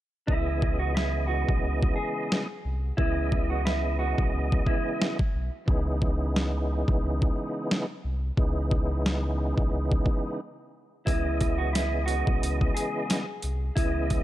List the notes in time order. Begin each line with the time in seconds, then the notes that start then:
0.26 C#2 C#3 E3 G#3 B3 E4 D#5, kick
0.62 kick
0.79 F#4
0.94 E4, snare
1.27 F#4
1.49 B1, kick
1.64 C#2
1.83 kick
1.96 G#4
2.32 snare
2.65 C2
2.97 C#2 C#3 E3 G#3 B3 E4 D#5, kick
3.32 kick
3.50 F#4
3.65 E4, snare
3.99 F#4
4.18 B1, kick
4.34 C#2
4.52 kick
4.67 E4, kick
5.02 snare
5.19 kick
5.35 B1
5.66 C#2 C#3 E3 G#3 B3 D#4, kick
6.02 kick
6.36 snare
6.88 B1, kick
7.03 C#2
7.22 kick
7.71 snare
8.05 C2
8.37 C#2 C#3 E3 G#3 B3 D#4, kick
8.71 kick
9.06 snare
9.58 B1, kick
9.73 C#2
9.92 kick
10.06 kick
11.05 C#2 C#3 E3 G#3 B3 E4 D#5, kick, closed hi-hat
11.41 kick, closed hi-hat
11.58 F#4
11.73 E4, snare, closed hi-hat
12.06 F#4, closed hi-hat
12.27 B1, kick
12.42 C#2, closed hi-hat
12.61 kick
12.74 G#4, closed hi-hat
13.10 snare, closed hi-hat
13.42 C2, closed hi-hat
13.76 C#2 C#3 E3 G#3 B3 E4 D#5, kick, closed hi-hat
14.10 kick, closed hi-hat